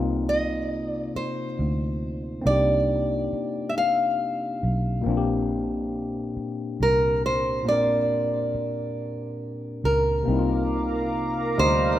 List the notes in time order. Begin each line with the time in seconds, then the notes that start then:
Already playing: C2 C3 A#3 C4 D#4 F4
0.29 D#5
0.89 D5
1.16 C5, muted fingered electric bass stroke
1.59 D2
2.42 C2 A#3 C4
2.46 D4 D#4 D5
2.50 G4
3.33 muted fingered electric bass stroke
3.69 E5
3.78 F5
4.63 B1
5.01 A#2 A#3
5.06 A#1 C4 D4
5.10 F4
5.17 G4
6.37 muted fingered electric bass stroke
6.80 C2 A#4
7.26 C5
7.63 A#2 A#3
7.67 A#1 C4 D4 D5
7.72 A#4
8.55 muted fingered electric bass stroke
9.84 C#2 A#4
10.23 C3 A#3
10.28 C2 C4 D#4 A#4 F5 A#5 D6
10.32 E4
10.39 F4
11.57 D2 A#2 G3 D#4 C5